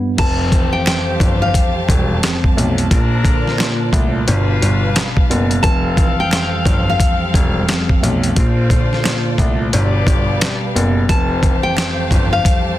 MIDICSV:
0, 0, Header, 1, 7, 480
1, 0, Start_track
1, 0, Key_signature, -1, "major"
1, 0, Tempo, 681818
1, 129, Time_signature, 4, 2, 24, 8
1, 9001, End_track
2, 0, Start_track
2, 0, Title_t, "Nylon-string guitar"
2, 0, Program_c, 0, 24
2, 132, Note_on_c, 0, 81, 95
2, 498, Note_off_c, 0, 81, 0
2, 511, Note_on_c, 0, 79, 73
2, 595, Note_off_c, 0, 79, 0
2, 619, Note_on_c, 0, 79, 92
2, 982, Note_off_c, 0, 79, 0
2, 999, Note_on_c, 0, 77, 77
2, 1216, Note_off_c, 0, 77, 0
2, 3961, Note_on_c, 0, 81, 94
2, 4332, Note_off_c, 0, 81, 0
2, 4364, Note_on_c, 0, 79, 73
2, 4442, Note_off_c, 0, 79, 0
2, 4456, Note_on_c, 0, 79, 85
2, 4820, Note_off_c, 0, 79, 0
2, 4855, Note_on_c, 0, 77, 78
2, 5064, Note_off_c, 0, 77, 0
2, 7810, Note_on_c, 0, 81, 91
2, 8177, Note_off_c, 0, 81, 0
2, 8189, Note_on_c, 0, 79, 75
2, 8274, Note_off_c, 0, 79, 0
2, 8296, Note_on_c, 0, 79, 92
2, 8660, Note_off_c, 0, 79, 0
2, 8678, Note_on_c, 0, 77, 78
2, 8895, Note_off_c, 0, 77, 0
2, 9001, End_track
3, 0, Start_track
3, 0, Title_t, "Saxophone section"
3, 0, Program_c, 1, 65
3, 128, Note_on_c, 1, 57, 81
3, 128, Note_on_c, 1, 67, 85
3, 128, Note_on_c, 1, 72, 99
3, 1780, Note_off_c, 1, 57, 0
3, 1780, Note_off_c, 1, 67, 0
3, 1780, Note_off_c, 1, 72, 0
3, 2050, Note_on_c, 1, 53, 86
3, 2050, Note_on_c, 1, 62, 78
3, 2050, Note_on_c, 1, 70, 100
3, 2755, Note_off_c, 1, 53, 0
3, 2755, Note_off_c, 1, 62, 0
3, 2755, Note_off_c, 1, 70, 0
3, 3011, Note_on_c, 1, 65, 92
3, 3011, Note_on_c, 1, 71, 92
3, 3012, Note_on_c, 1, 55, 84
3, 3716, Note_off_c, 1, 55, 0
3, 3716, Note_off_c, 1, 65, 0
3, 3716, Note_off_c, 1, 71, 0
3, 3950, Note_on_c, 1, 60, 91
3, 3950, Note_on_c, 1, 69, 94
3, 3950, Note_on_c, 1, 77, 96
3, 5611, Note_off_c, 1, 60, 0
3, 5611, Note_off_c, 1, 69, 0
3, 5611, Note_off_c, 1, 77, 0
3, 5888, Note_on_c, 1, 65, 85
3, 5889, Note_on_c, 1, 57, 83
3, 5889, Note_on_c, 1, 72, 88
3, 6594, Note_off_c, 1, 57, 0
3, 6594, Note_off_c, 1, 65, 0
3, 6595, Note_off_c, 1, 72, 0
3, 6846, Note_on_c, 1, 59, 88
3, 6846, Note_on_c, 1, 67, 90
3, 6846, Note_on_c, 1, 74, 100
3, 7553, Note_off_c, 1, 59, 0
3, 7553, Note_off_c, 1, 67, 0
3, 7553, Note_off_c, 1, 74, 0
3, 7808, Note_on_c, 1, 67, 86
3, 7808, Note_on_c, 1, 72, 99
3, 7809, Note_on_c, 1, 57, 88
3, 9001, Note_off_c, 1, 57, 0
3, 9001, Note_off_c, 1, 67, 0
3, 9001, Note_off_c, 1, 72, 0
3, 9001, End_track
4, 0, Start_track
4, 0, Title_t, "String section"
4, 0, Program_c, 2, 48
4, 130, Note_on_c, 2, 67, 73
4, 131, Note_on_c, 2, 60, 73
4, 131, Note_on_c, 2, 77, 83
4, 131, Note_on_c, 2, 81, 72
4, 132, Note_on_c, 2, 55, 71
4, 2031, Note_off_c, 2, 55, 0
4, 2031, Note_off_c, 2, 60, 0
4, 2031, Note_off_c, 2, 67, 0
4, 2031, Note_off_c, 2, 77, 0
4, 2051, Note_on_c, 2, 46, 77
4, 2051, Note_on_c, 2, 65, 70
4, 2051, Note_on_c, 2, 74, 81
4, 2052, Note_on_c, 2, 72, 75
4, 3000, Note_off_c, 2, 46, 0
4, 3000, Note_off_c, 2, 74, 0
4, 3001, Note_off_c, 2, 65, 0
4, 3001, Note_off_c, 2, 72, 0
4, 3008, Note_on_c, 2, 55, 78
4, 3008, Note_on_c, 2, 62, 66
4, 3008, Note_on_c, 2, 71, 68
4, 3008, Note_on_c, 2, 77, 84
4, 3942, Note_off_c, 2, 81, 0
4, 3959, Note_off_c, 2, 55, 0
4, 3959, Note_off_c, 2, 62, 0
4, 3959, Note_off_c, 2, 71, 0
4, 3959, Note_off_c, 2, 77, 0
4, 3969, Note_on_c, 2, 55, 80
4, 3969, Note_on_c, 2, 60, 76
4, 3969, Note_on_c, 2, 67, 69
4, 3970, Note_on_c, 2, 69, 72
4, 3971, Note_on_c, 2, 77, 81
4, 5870, Note_off_c, 2, 55, 0
4, 5870, Note_off_c, 2, 60, 0
4, 5870, Note_off_c, 2, 67, 0
4, 5871, Note_off_c, 2, 69, 0
4, 5871, Note_off_c, 2, 77, 0
4, 5905, Note_on_c, 2, 69, 67
4, 5906, Note_on_c, 2, 46, 80
4, 5906, Note_on_c, 2, 65, 76
4, 5906, Note_on_c, 2, 72, 73
4, 5906, Note_on_c, 2, 74, 86
4, 6838, Note_off_c, 2, 69, 0
4, 6845, Note_on_c, 2, 77, 79
4, 6846, Note_on_c, 2, 67, 65
4, 6846, Note_on_c, 2, 69, 69
4, 6846, Note_on_c, 2, 71, 73
4, 6847, Note_on_c, 2, 55, 74
4, 6848, Note_off_c, 2, 46, 0
4, 6848, Note_off_c, 2, 65, 0
4, 6848, Note_off_c, 2, 72, 0
4, 6848, Note_off_c, 2, 74, 0
4, 7798, Note_off_c, 2, 55, 0
4, 7798, Note_off_c, 2, 67, 0
4, 7798, Note_off_c, 2, 69, 0
4, 7798, Note_off_c, 2, 71, 0
4, 7798, Note_off_c, 2, 77, 0
4, 7810, Note_on_c, 2, 55, 75
4, 7810, Note_on_c, 2, 67, 72
4, 7810, Note_on_c, 2, 77, 86
4, 7811, Note_on_c, 2, 60, 72
4, 7811, Note_on_c, 2, 81, 72
4, 9001, Note_off_c, 2, 55, 0
4, 9001, Note_off_c, 2, 60, 0
4, 9001, Note_off_c, 2, 67, 0
4, 9001, Note_off_c, 2, 77, 0
4, 9001, Note_off_c, 2, 81, 0
4, 9001, End_track
5, 0, Start_track
5, 0, Title_t, "Tine electric piano"
5, 0, Program_c, 3, 4
5, 0, Control_c, 3, 64, 127
5, 0, Note_on_c, 3, 43, 74
5, 0, Note_on_c, 3, 55, 80
5, 0, Note_on_c, 3, 59, 90
5, 122, Note_on_c, 3, 41, 103
5, 126, Note_off_c, 3, 43, 0
5, 133, Note_off_c, 3, 55, 0
5, 133, Note_off_c, 3, 59, 0
5, 137, Control_c, 3, 64, 0
5, 283, Control_c, 3, 64, 127
5, 362, Note_on_c, 3, 52, 81
5, 850, Note_on_c, 3, 53, 80
5, 1326, Note_off_c, 3, 41, 0
5, 1347, Note_on_c, 3, 55, 86
5, 1566, Note_off_c, 3, 52, 0
5, 1571, Note_on_c, 3, 41, 87
5, 1799, Note_on_c, 3, 57, 85
5, 2044, Note_off_c, 3, 57, 0
5, 2046, Note_on_c, 3, 46, 91
5, 2049, Note_off_c, 3, 53, 0
5, 2050, Note_off_c, 3, 41, 0
5, 2056, Control_c, 3, 64, 0
5, 2058, Note_off_c, 3, 55, 0
5, 2189, Control_c, 3, 64, 127
5, 2276, Note_on_c, 3, 50, 86
5, 2511, Note_off_c, 3, 46, 0
5, 2519, Note_on_c, 3, 46, 85
5, 2766, Note_on_c, 3, 57, 87
5, 3002, Note_off_c, 3, 50, 0
5, 3004, Note_off_c, 3, 46, 0
5, 3008, Note_off_c, 3, 57, 0
5, 3012, Note_on_c, 3, 47, 94
5, 3018, Control_c, 3, 64, 0
5, 3149, Control_c, 3, 64, 127
5, 3258, Note_on_c, 3, 55, 85
5, 3734, Note_on_c, 3, 59, 97
5, 3962, Note_on_c, 3, 41, 104
5, 3971, Note_off_c, 3, 47, 0
5, 3972, Note_off_c, 3, 59, 0
5, 3973, Note_off_c, 3, 55, 0
5, 3979, Control_c, 3, 64, 0
5, 4088, Control_c, 3, 64, 127
5, 4202, Note_on_c, 3, 52, 85
5, 4688, Note_on_c, 3, 53, 78
5, 5165, Note_off_c, 3, 41, 0
5, 5184, Note_on_c, 3, 55, 90
5, 5405, Note_off_c, 3, 52, 0
5, 5410, Note_on_c, 3, 41, 87
5, 5640, Note_on_c, 3, 57, 84
5, 5884, Note_off_c, 3, 57, 0
5, 5888, Note_off_c, 3, 53, 0
5, 5888, Note_on_c, 3, 46, 95
5, 5889, Note_off_c, 3, 41, 0
5, 5896, Note_off_c, 3, 55, 0
5, 5899, Control_c, 3, 64, 0
5, 6004, Control_c, 3, 64, 127
5, 6118, Note_on_c, 3, 50, 89
5, 6354, Note_off_c, 3, 46, 0
5, 6362, Note_on_c, 3, 46, 83
5, 6608, Note_on_c, 3, 57, 88
5, 6844, Note_off_c, 3, 50, 0
5, 6845, Note_off_c, 3, 46, 0
5, 6848, Note_off_c, 3, 57, 0
5, 6853, Note_on_c, 3, 47, 95
5, 6857, Control_c, 3, 64, 0
5, 6976, Control_c, 3, 64, 127
5, 7099, Note_on_c, 3, 55, 89
5, 7574, Note_on_c, 3, 59, 94
5, 7804, Note_on_c, 3, 41, 105
5, 7811, Note_off_c, 3, 47, 0
5, 7812, Note_off_c, 3, 59, 0
5, 7814, Note_off_c, 3, 55, 0
5, 7817, Control_c, 3, 64, 0
5, 7928, Control_c, 3, 64, 127
5, 8042, Note_on_c, 3, 52, 81
5, 8529, Note_on_c, 3, 53, 83
5, 9001, Note_off_c, 3, 41, 0
5, 9001, Note_off_c, 3, 52, 0
5, 9001, Note_off_c, 3, 53, 0
5, 9001, End_track
6, 0, Start_track
6, 0, Title_t, "Grand piano"
6, 0, Program_c, 4, 0
6, 130, Note_on_c, 4, 29, 108
6, 424, Note_off_c, 4, 29, 0
6, 846, Note_on_c, 4, 31, 90
6, 1028, Note_off_c, 4, 31, 0
6, 1329, Note_on_c, 4, 28, 91
6, 1509, Note_off_c, 4, 28, 0
6, 1810, Note_on_c, 4, 35, 90
6, 1990, Note_off_c, 4, 35, 0
6, 2050, Note_on_c, 4, 34, 106
6, 2344, Note_off_c, 4, 34, 0
6, 2765, Note_on_c, 4, 36, 91
6, 2947, Note_off_c, 4, 36, 0
6, 3010, Note_on_c, 4, 31, 110
6, 3191, Note_off_c, 4, 31, 0
6, 3251, Note_on_c, 4, 31, 92
6, 3431, Note_off_c, 4, 31, 0
6, 3733, Note_on_c, 4, 30, 95
6, 3912, Note_off_c, 4, 30, 0
6, 3969, Note_on_c, 4, 29, 111
6, 4263, Note_off_c, 4, 29, 0
6, 4686, Note_on_c, 4, 31, 91
6, 4868, Note_off_c, 4, 31, 0
6, 5168, Note_on_c, 4, 28, 92
6, 5349, Note_off_c, 4, 28, 0
6, 5652, Note_on_c, 4, 35, 93
6, 5832, Note_off_c, 4, 35, 0
6, 5890, Note_on_c, 4, 34, 109
6, 6184, Note_off_c, 4, 34, 0
6, 6607, Note_on_c, 4, 36, 90
6, 6788, Note_off_c, 4, 36, 0
6, 6852, Note_on_c, 4, 31, 111
6, 7031, Note_off_c, 4, 31, 0
6, 7088, Note_on_c, 4, 31, 91
6, 7269, Note_off_c, 4, 31, 0
6, 7571, Note_on_c, 4, 30, 98
6, 7751, Note_off_c, 4, 30, 0
6, 7810, Note_on_c, 4, 29, 107
6, 8104, Note_off_c, 4, 29, 0
6, 8526, Note_on_c, 4, 31, 91
6, 8708, Note_off_c, 4, 31, 0
6, 9001, End_track
7, 0, Start_track
7, 0, Title_t, "Drums"
7, 129, Note_on_c, 9, 42, 92
7, 129, Note_on_c, 9, 49, 105
7, 130, Note_on_c, 9, 36, 124
7, 199, Note_off_c, 9, 49, 0
7, 200, Note_off_c, 9, 36, 0
7, 200, Note_off_c, 9, 42, 0
7, 366, Note_on_c, 9, 36, 88
7, 369, Note_on_c, 9, 42, 62
7, 436, Note_off_c, 9, 36, 0
7, 440, Note_off_c, 9, 42, 0
7, 605, Note_on_c, 9, 26, 63
7, 614, Note_on_c, 9, 38, 110
7, 615, Note_on_c, 9, 42, 92
7, 622, Note_on_c, 9, 39, 89
7, 676, Note_off_c, 9, 26, 0
7, 684, Note_off_c, 9, 38, 0
7, 686, Note_off_c, 9, 42, 0
7, 692, Note_off_c, 9, 39, 0
7, 846, Note_on_c, 9, 36, 97
7, 852, Note_on_c, 9, 42, 81
7, 916, Note_off_c, 9, 36, 0
7, 922, Note_off_c, 9, 42, 0
7, 1086, Note_on_c, 9, 36, 99
7, 1091, Note_on_c, 9, 42, 114
7, 1157, Note_off_c, 9, 36, 0
7, 1162, Note_off_c, 9, 42, 0
7, 1328, Note_on_c, 9, 36, 95
7, 1336, Note_on_c, 9, 42, 79
7, 1398, Note_off_c, 9, 36, 0
7, 1406, Note_off_c, 9, 42, 0
7, 1571, Note_on_c, 9, 42, 90
7, 1574, Note_on_c, 9, 26, 71
7, 1574, Note_on_c, 9, 38, 117
7, 1582, Note_on_c, 9, 39, 96
7, 1641, Note_off_c, 9, 42, 0
7, 1645, Note_off_c, 9, 26, 0
7, 1645, Note_off_c, 9, 38, 0
7, 1652, Note_off_c, 9, 39, 0
7, 1718, Note_on_c, 9, 36, 79
7, 1788, Note_off_c, 9, 36, 0
7, 1818, Note_on_c, 9, 42, 76
7, 1889, Note_off_c, 9, 42, 0
7, 1959, Note_on_c, 9, 42, 60
7, 2029, Note_off_c, 9, 42, 0
7, 2049, Note_on_c, 9, 36, 118
7, 2050, Note_on_c, 9, 42, 96
7, 2119, Note_off_c, 9, 36, 0
7, 2120, Note_off_c, 9, 42, 0
7, 2285, Note_on_c, 9, 36, 93
7, 2290, Note_on_c, 9, 42, 62
7, 2355, Note_off_c, 9, 36, 0
7, 2360, Note_off_c, 9, 42, 0
7, 2446, Note_on_c, 9, 38, 37
7, 2517, Note_off_c, 9, 38, 0
7, 2523, Note_on_c, 9, 26, 62
7, 2535, Note_on_c, 9, 38, 112
7, 2536, Note_on_c, 9, 42, 92
7, 2543, Note_on_c, 9, 39, 91
7, 2593, Note_off_c, 9, 26, 0
7, 2605, Note_off_c, 9, 38, 0
7, 2607, Note_off_c, 9, 42, 0
7, 2613, Note_off_c, 9, 39, 0
7, 2765, Note_on_c, 9, 36, 98
7, 2772, Note_on_c, 9, 42, 80
7, 2835, Note_off_c, 9, 36, 0
7, 2842, Note_off_c, 9, 42, 0
7, 3011, Note_on_c, 9, 42, 112
7, 3081, Note_off_c, 9, 42, 0
7, 3256, Note_on_c, 9, 42, 81
7, 3326, Note_off_c, 9, 42, 0
7, 3491, Note_on_c, 9, 42, 89
7, 3492, Note_on_c, 9, 26, 71
7, 3494, Note_on_c, 9, 38, 116
7, 3502, Note_on_c, 9, 39, 96
7, 3561, Note_off_c, 9, 42, 0
7, 3562, Note_off_c, 9, 26, 0
7, 3565, Note_off_c, 9, 38, 0
7, 3572, Note_off_c, 9, 39, 0
7, 3637, Note_on_c, 9, 36, 83
7, 3708, Note_off_c, 9, 36, 0
7, 3738, Note_on_c, 9, 42, 78
7, 3808, Note_off_c, 9, 42, 0
7, 3878, Note_on_c, 9, 42, 59
7, 3948, Note_off_c, 9, 42, 0
7, 3969, Note_on_c, 9, 36, 124
7, 3969, Note_on_c, 9, 42, 94
7, 4039, Note_off_c, 9, 36, 0
7, 4039, Note_off_c, 9, 42, 0
7, 4205, Note_on_c, 9, 36, 91
7, 4208, Note_on_c, 9, 42, 60
7, 4275, Note_off_c, 9, 36, 0
7, 4279, Note_off_c, 9, 42, 0
7, 4444, Note_on_c, 9, 26, 62
7, 4454, Note_on_c, 9, 38, 116
7, 4455, Note_on_c, 9, 42, 94
7, 4462, Note_on_c, 9, 39, 93
7, 4514, Note_off_c, 9, 26, 0
7, 4525, Note_off_c, 9, 38, 0
7, 4526, Note_off_c, 9, 42, 0
7, 4532, Note_off_c, 9, 39, 0
7, 4685, Note_on_c, 9, 36, 102
7, 4692, Note_on_c, 9, 42, 81
7, 4755, Note_off_c, 9, 36, 0
7, 4762, Note_off_c, 9, 42, 0
7, 4926, Note_on_c, 9, 36, 98
7, 4931, Note_on_c, 9, 42, 110
7, 4996, Note_off_c, 9, 36, 0
7, 5001, Note_off_c, 9, 42, 0
7, 5167, Note_on_c, 9, 36, 100
7, 5176, Note_on_c, 9, 42, 80
7, 5238, Note_off_c, 9, 36, 0
7, 5247, Note_off_c, 9, 42, 0
7, 5411, Note_on_c, 9, 42, 89
7, 5412, Note_on_c, 9, 26, 70
7, 5414, Note_on_c, 9, 38, 120
7, 5422, Note_on_c, 9, 39, 97
7, 5481, Note_off_c, 9, 42, 0
7, 5483, Note_off_c, 9, 26, 0
7, 5485, Note_off_c, 9, 38, 0
7, 5492, Note_off_c, 9, 39, 0
7, 5558, Note_on_c, 9, 36, 82
7, 5628, Note_off_c, 9, 36, 0
7, 5657, Note_on_c, 9, 42, 78
7, 5727, Note_off_c, 9, 42, 0
7, 5798, Note_on_c, 9, 42, 60
7, 5868, Note_off_c, 9, 42, 0
7, 5889, Note_on_c, 9, 36, 122
7, 5889, Note_on_c, 9, 42, 94
7, 5959, Note_off_c, 9, 36, 0
7, 5959, Note_off_c, 9, 42, 0
7, 6125, Note_on_c, 9, 36, 92
7, 6129, Note_on_c, 9, 42, 64
7, 6195, Note_off_c, 9, 36, 0
7, 6199, Note_off_c, 9, 42, 0
7, 6286, Note_on_c, 9, 38, 36
7, 6356, Note_off_c, 9, 38, 0
7, 6364, Note_on_c, 9, 26, 62
7, 6375, Note_on_c, 9, 38, 114
7, 6376, Note_on_c, 9, 42, 93
7, 6382, Note_on_c, 9, 39, 91
7, 6434, Note_off_c, 9, 26, 0
7, 6445, Note_off_c, 9, 38, 0
7, 6446, Note_off_c, 9, 42, 0
7, 6452, Note_off_c, 9, 39, 0
7, 6605, Note_on_c, 9, 36, 101
7, 6611, Note_on_c, 9, 42, 81
7, 6675, Note_off_c, 9, 36, 0
7, 6682, Note_off_c, 9, 42, 0
7, 6851, Note_on_c, 9, 42, 115
7, 6921, Note_off_c, 9, 42, 0
7, 7087, Note_on_c, 9, 36, 97
7, 7095, Note_on_c, 9, 42, 79
7, 7157, Note_off_c, 9, 36, 0
7, 7165, Note_off_c, 9, 42, 0
7, 7331, Note_on_c, 9, 42, 88
7, 7333, Note_on_c, 9, 26, 71
7, 7335, Note_on_c, 9, 38, 116
7, 7342, Note_on_c, 9, 39, 97
7, 7402, Note_off_c, 9, 42, 0
7, 7403, Note_off_c, 9, 26, 0
7, 7405, Note_off_c, 9, 38, 0
7, 7413, Note_off_c, 9, 39, 0
7, 7578, Note_on_c, 9, 42, 78
7, 7648, Note_off_c, 9, 42, 0
7, 7809, Note_on_c, 9, 36, 124
7, 7809, Note_on_c, 9, 42, 93
7, 7879, Note_off_c, 9, 36, 0
7, 7880, Note_off_c, 9, 42, 0
7, 8045, Note_on_c, 9, 36, 91
7, 8049, Note_on_c, 9, 42, 61
7, 8115, Note_off_c, 9, 36, 0
7, 8119, Note_off_c, 9, 42, 0
7, 8284, Note_on_c, 9, 26, 63
7, 8294, Note_on_c, 9, 38, 115
7, 8295, Note_on_c, 9, 42, 91
7, 8301, Note_on_c, 9, 39, 93
7, 8354, Note_off_c, 9, 26, 0
7, 8364, Note_off_c, 9, 38, 0
7, 8365, Note_off_c, 9, 42, 0
7, 8372, Note_off_c, 9, 39, 0
7, 8524, Note_on_c, 9, 36, 103
7, 8531, Note_on_c, 9, 42, 80
7, 8595, Note_off_c, 9, 36, 0
7, 8601, Note_off_c, 9, 42, 0
7, 8765, Note_on_c, 9, 36, 100
7, 8770, Note_on_c, 9, 42, 107
7, 8835, Note_off_c, 9, 36, 0
7, 8840, Note_off_c, 9, 42, 0
7, 9001, End_track
0, 0, End_of_file